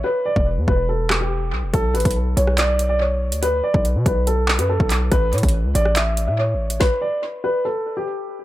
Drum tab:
HH |--------------------------------|x---xxxx----x---x---x---------x-|x-------x---x---x-----x-----x---|x---xxxx----x---x---x---------x-|
CP |--------------------x-----------|----------------x---------------|--------------------x-------x---|----------------x---------------|
SD |--------------------r-----------|--------------r-----------------|--------------------------------|--------------r-----------------|
BD |------o-----o-------------------|o-----o-------------------------|------o-----o-------------o-----|o-----o-------------------------|

HH |--------------------------------|
CP |--------------------------------|
SD |o-------------------------------|
BD |o-------------------------------|